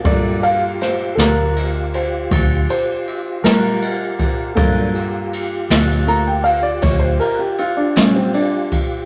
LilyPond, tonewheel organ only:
\new Staff \with { instrumentName = "Tonewheel organ" } { \time 12/8 \key g \minor \tempo 4. = 53 <f' g'>1. | <fis bes d' aes''>8 <f' g'>1~ <f' g'>4. | }